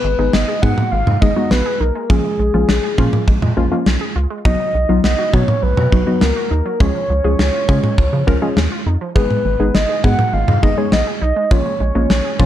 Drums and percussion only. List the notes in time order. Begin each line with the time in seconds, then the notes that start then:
0.33 snare
0.63 kick
0.78 mid tom
1.07 mid tom
1.22 kick
1.51 snare
2.10 kick
2.69 snare
2.98 kick
3.13 mid tom
3.28 kick
3.42 mid tom
3.86 snare
4.45 kick
5.04 snare
5.33 kick
5.48 mid tom
5.77 mid tom
5.92 kick
6.21 snare
6.80 kick
7.39 snare
7.69 kick
7.84 mid tom
7.98 kick
8.28 kick
8.57 snare
9.16 kick
9.31 mid tom
9.75 snare
10.04 kick
10.19 mid tom
10.48 mid tom
10.63 kick
10.92 snare
11.51 kick
12.10 snare
12.39 kick